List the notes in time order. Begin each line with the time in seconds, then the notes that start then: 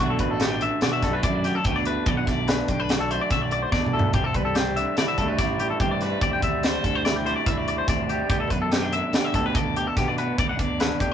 0.00 B1 B2 D3 A3 D4 F#4
0.10 A4
0.19 A1 A3 B4, kick, closed hi-hat
0.31 A4
0.40 B3 G4, snare, closed hi-hat
0.51 D4
0.61 D3 E5, closed hi-hat
0.81 B2 F#4 D5, snare, closed hi-hat
0.93 E5
1.02 B1 F#2 G3 A4, kick, snare, closed hi-hat
1.13 A3 B4
1.23 F#2 E4 D5, kick, closed hi-hat
1.35 F#4
1.44 G4, snare, closed hi-hat
1.55 A4
1.64 D2 B2 B3 G4, kick, closed hi-hat
1.76 D4 D5
1.85 A3 B4, closed hi-hat
2.06 B1 B2 B3 D5, kick, closed hi-hat
2.17 D4 F#5
2.27 B1 A3 D5, kick, snare, closed hi-hat
2.48 D4 B4, snare, closed hi-hat
2.68 B1 D3 G4, kick, closed hi-hat
2.80 B4
2.89 F#4 D5, snare, closed hi-hat
3.00 A4
3.10 F#2 A3 C5, closed hi-hat
3.21 D5
3.30 B1 F#4 E5, kick, snare, closed hi-hat
3.42 D5
3.51 D5, closed hi-hat
3.62 C5
3.72 E2 B2 D4 D5, kick, snare
3.86 mid tom
3.93 D2 A3 A4
3.99 floor tom
4.13 D2 C4 G4, kick, closed hi-hat
4.24 A4
4.34 C2 G3 B4, kick, closed hi-hat
4.45 A4
4.55 C4 G4, snare, closed hi-hat
4.76 D3 E5, closed hi-hat
4.97 D3 E4 D5, snare, closed hi-hat
5.08 E5
5.18 D2 A2 G3 A4, kick, closed hi-hat
5.28 B4
5.38 A1 E4 D5, kick, snare, closed hi-hat
5.59 G4, closed hi-hat
5.70 A4
5.80 D2 G2 C4 G4, kick, closed hi-hat
5.91 D5
6.01 G3 B4, snare, closed hi-hat
6.21 D2 C4 D5, kick, closed hi-hat
6.33 G5
6.42 D2 G3 E5, kick, closed hi-hat
6.63 C4 C5, snare, closed hi-hat
6.84 D2 D3 A4, kick, closed hi-hat
6.95 C5
7.05 E4 D5, snare, closed hi-hat
7.16 G4
7.25 A2 G3 C5, closed hi-hat
7.36 D5
7.46 D2 E4 E5, kick, closed hi-hat
7.57 D5
7.68 D5, closed hi-hat
7.78 C5
7.88 D2 C4 D5, kick, snare, closed hi-hat
8.09 G3 G4, closed hi-hat
8.29 D2 B3 G4, kick, closed hi-hat
8.40 D4 A4
8.50 F#2 B3 B4, kick, closed hi-hat
8.62 A4
8.71 B3 G4, snare, closed hi-hat
8.82 D4
8.92 D3 E5, closed hi-hat
9.13 D3 G4 D5, snare, closed hi-hat
9.24 E5
9.34 D2 B3 A4, kick, closed hi-hat
9.46 B4
9.55 D2 A4 D5, kick, closed hi-hat
9.76 G4, closed hi-hat
9.87 A4
9.96 D2 B2 B3 G4, kick, snare, closed hi-hat
10.08 D4 D5
10.18 B3 B4, closed hi-hat
10.38 D2 B3 D5, kick, closed hi-hat
10.49 D4 F#5
10.59 D2 B3 D5, kick, closed hi-hat
10.80 D4 B4, snare, closed hi-hat
11.00 D2 D3 G4, kick, closed hi-hat